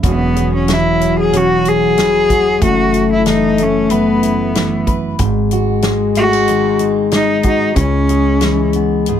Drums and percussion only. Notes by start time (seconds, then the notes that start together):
0.03 kick, closed hi-hat
0.36 closed hi-hat
0.68 snare, closed hi-hat
1.01 closed hi-hat
1.33 closed hi-hat
1.65 closed hi-hat
1.98 snare, closed hi-hat
2.30 kick, closed hi-hat
2.61 kick, closed hi-hat
2.94 closed hi-hat
3.26 snare, closed hi-hat
3.58 closed hi-hat
3.90 closed hi-hat
4.23 closed hi-hat
4.55 snare, closed hi-hat
4.87 kick, closed hi-hat
5.19 kick, closed hi-hat
5.51 closed hi-hat
5.82 snare, closed hi-hat
6.15 closed hi-hat
6.48 closed hi-hat
6.79 closed hi-hat
7.11 snare, closed hi-hat
7.43 kick, closed hi-hat
7.76 kick, closed hi-hat
8.09 closed hi-hat
8.41 snare, closed hi-hat
8.73 closed hi-hat
9.06 closed hi-hat